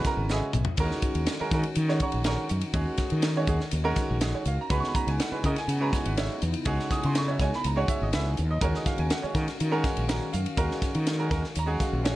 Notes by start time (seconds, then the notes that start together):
Already playing: C#3 G#3 B3 C#4 E4 F#4 B4
0.04 A#4 A#5, muted fretless electric bass stroke, kick, snare, hi-hat pedal, ride
0.17 G#1
0.29 G#3 C#4 F#4 G#4 B4 D#5 E5 G#5, snare, hi-hat pedal
0.42 muted fretless electric bass stroke
0.53 B1 F#4 B4, hi-hat pedal, mid tom
0.65 floor tom
0.77 D#2 D#3 G#3 C#4 D#4 F#4 A#4, kick, hi-hat pedal, ride, splash
0.91 snare
1.02 muted fretless electric bass stroke, kick, hi-hat pedal, ride
1.15 D#2, ride
1.26 snare, hi-hat pedal, ride
1.40 G#3 C#4 F#4 A#4, muted fretless electric bass stroke
1.51 D#3 G#3 C#4 F#4 A#4, kick, snare, hi-hat pedal, ride
1.63 F#4 C#5, ride
1.75 D#3 F#4 A#4, hi-hat pedal, ride
1.88 G#3 C#4 F#4 C#5, snare
2.00 C#5 F#5 A#5 C#6, kick, hi-hat pedal, ride
2.12 A#1, ride
2.24 G#3 C#4 F#4 A#4 C#5 F#5 A#5 C#6, snare, hi-hat pedal, ride
2.49 F#2 F#4 A#4, hi-hat pedal, ride
2.61 ride
2.74 D#2 G#3 C#4 F#4 G#4, kick, hi-hat pedal, ride
2.98 muted fretless electric bass stroke, kick, snare, hi-hat pedal, ride
3.10 D#3, ride
3.22 snare, hi-hat pedal, ride
3.36 G#3 C#4 F#4 C#5
3.47 D#2 G#3 C#4 F#4 G#4, kick, hi-hat pedal, ride
3.60 F#4 C#5, snare
3.71 D#2 F#4 A#4, hi-hat pedal, ride
3.84 G#3 C#4 F#4 A#4
3.96 kick, snare, hi-hat pedal, ride
4.11 A#1
4.21 G#3 C#4 F#4 G#4, snare, hi-hat pedal, ride
4.35 C#5
4.45 C#2 F#4 A#4 F5, hi-hat pedal, ride
4.61 A#5
4.70 C#2 C#3 G#3 B3 C#4 D#4 E4 F#4 B4 B5, kick, hi-hat pedal, ride
4.80 C#6, snare
4.88 B5
4.95 A#5, muted fretless electric bass stroke, kick, hi-hat pedal, ride
5.07 C#2 G#5, ride
5.20 F#5, snare, hi-hat pedal, ride
5.31 G#3 C#4 F#4 B4, muted fretless electric bass stroke
5.44 C#3 G#3 C#4 F#4 A#4 D#5, kick, hi-hat pedal, ride
5.56 F#4 A#4 G#5, snare, ride
5.68 C#3 F#4 B4 F#5, hi-hat pedal, ride
5.80 G#3 C#4 F#4 B4 A#5
5.93 G#5, kick, snare, hi-hat pedal, ride
6.05 G#1 F#5, ride
6.16 G#3 C#4 F#4 C#5 E5, snare, hi-hat pedal, ride
6.41 E2 F#4 B4, hi-hat pedal, ride
6.54 ride
6.65 C#2 G#3 C#4 F#4 G#4, kick, hi-hat pedal, ride
6.79 snare
6.91 D#6, muted fretless electric bass stroke, kick, snare, hi-hat pedal, ride
7.03 C#3 C6, ride
7.15 C#6, snare, hi-hat pedal, ride
7.27 G#3 C#4 F#4 C#5 E5
7.39 C#2 G#3 C#4 F#4 C#5 G#5, kick, snare, hi-hat pedal, ride
7.52 F#4 A#4 B5, snare
7.64 C#2 F#4 B4 A#5, hi-hat pedal, ride
7.76 G#3 C#4 F#4 C#5 F#5
7.88 E5, kick, hi-hat pedal, ride
8.02 G#1 D#5
8.12 C#2 G#3 C#4 F#4 B4 E5, snare, hi-hat pedal, ride
8.28 G#4
8.37 D#2 F#4 B4, hi-hat pedal, ride
8.51 D#5
8.61 D#2 D#3 G#3 C#4 F#4 A#4 C#5 F5, kick, hi-hat pedal, ride
8.74 D#5, snare
8.86 F5, muted fretless electric bass stroke, kick, snare, hi-hat pedal, ride
8.98 D#2 G#5, ride
9.10 F#5, snare, hi-hat pedal, ride
9.23 G#3 C#4 F#4 C#5, muted fretless electric bass stroke
9.34 D#3 G#3 C#4 F#4 A#4, kick, snare, hi-hat pedal, ride
9.47 F#4 A#4, snare, ride
9.59 D#3 F#4 A#4, hi-hat pedal, ride
9.71 G#3 C#4 F#4 A#4
9.84 kick, snare, hi-hat pedal, ride
9.97 A#1, ride
10.08 G#3 C#4 F#4 A#4 A#5, snare, hi-hat pedal, ride
10.32 F#2 F#4 A#4 F5, hi-hat pedal, ride
10.46 ride
10.57 D#2 G#3 C#4 F#4 A#4, kick, hi-hat pedal, ride
10.71 snare
10.82 muted fretless electric bass stroke, kick, snare, hi-hat pedal, ride
10.95 D#3, ride
11.07 snare, hi-hat pedal, ride
11.19 G#3 C#4 F#4 A#4
11.30 D#2 G#3 C#4 F#4 A#4, kick, snare, hi-hat pedal, ride
11.44 F#4 A#4, snare
11.55 D#2 F#4 C#5, hi-hat pedal, ride
11.59 A#5
11.66 G#3 C#4 F#4 G#4
11.80 F5, kick, snare, hi-hat pedal, ride
11.93 A#1
12.03 G#3 C#4 F#4 C#5, snare, hi-hat pedal, ride